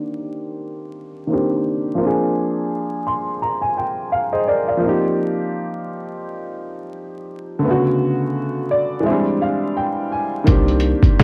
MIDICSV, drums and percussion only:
0, 0, Header, 1, 2, 480
1, 0, Start_track
1, 0, Tempo, 705882
1, 1362, Time_signature, 4, 2, 24, 8
1, 7638, End_track
2, 0, Start_track
2, 0, Title_t, "Drums"
2, 7119, Note_on_c, 9, 42, 80
2, 7124, Note_on_c, 9, 36, 105
2, 7187, Note_off_c, 9, 42, 0
2, 7192, Note_off_c, 9, 36, 0
2, 7265, Note_on_c, 9, 42, 35
2, 7333, Note_off_c, 9, 42, 0
2, 7343, Note_on_c, 9, 42, 60
2, 7411, Note_off_c, 9, 42, 0
2, 7498, Note_on_c, 9, 36, 100
2, 7506, Note_on_c, 9, 42, 46
2, 7566, Note_off_c, 9, 36, 0
2, 7574, Note_off_c, 9, 42, 0
2, 7613, Note_on_c, 9, 42, 78
2, 7614, Note_on_c, 9, 38, 117
2, 7638, Note_off_c, 9, 38, 0
2, 7638, Note_off_c, 9, 42, 0
2, 7638, End_track
0, 0, End_of_file